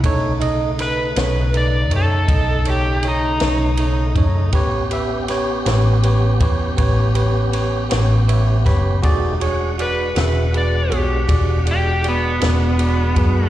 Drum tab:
RD |xxxxxxxxxxxx|xxxxxxxxxxxx|xxxxxxxxxxxx|
SD |--oo-----o--|--oo-----o-o|---o-----o--|
BD |o-----o----o|o----oo----o|o-----o----o|